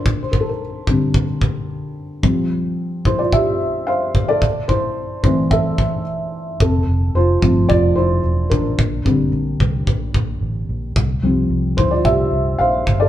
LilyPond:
<<
  \new Staff \with { instrumentName = "Felt piano" } { \time 4/4 \key c \mixolydian \tempo 4 = 110 << { \tuplet 3/2 { bes'8 c''16 bes'16 a'16 bes'16 } r2. | r4. c''16 d''16 e''4 f''8. d''16~ | d''8 c''4 c''8 e''4 r4 | a'4 c''4 d''8 c''4 bes'8~ |
bes'4 r2. | r4. c''16 d''16 e''4 f''8. d''16 | } \\ { d'16 r2. r8. | r4. e'16 f'16 g'4 c''8. a'16~ | a'8 e'4 e'8 a'4 r4 | c'4 f'4 f'8 e'4 d'8~ |
d'4 r2. | r4. e'16 f'16 g'4 c''8. a'16 | } >> }
  \new Staff \with { instrumentName = "Felt piano" } { \clef bass \time 4/4 \key c \mixolydian r4. <d g c'>8 r2 | <f g c'>4. r2 r8 | r4. <e a c'>4. r4 | r4. <f a c'>4. r4 |
r8 <d g c'>4. r2 | r8 <f g c'>2.~ <f g c'>8 | }
  \new Staff \with { instrumentName = "Fingered electric bass" } { \clef bass \time 4/4 \key c \mixolydian r1 | r1 | r1 | f,,8 f,,8 f,,8 g,,8 f,,8 f,,8 e,,8 a,,8 |
bes,,8 bes,,8 bes,,8 c,8 bes,,8 bes,,8 a,,8 bes,,8 | c,8 c,8 c,8 d,8 c,8 c,8 bes,,8 g,,8 | }
  \new DrumStaff \with { instrumentName = "Drums" } \drummode { \time 4/4 bd8 bd8 r8 bd8 bd8 bd8 r4 | bd4 r8 bd8 bd4 r8 bd8 | bd8 bd8 r8 bd8 bd8 bd8 r4 | bd4 r8 bd8 bd4 r8 bd8 |
bd8 bd8 r8 bd8 bd8 bd8 r4 | bd4 r8 bd8 bd4 r8 bd8 | }
>>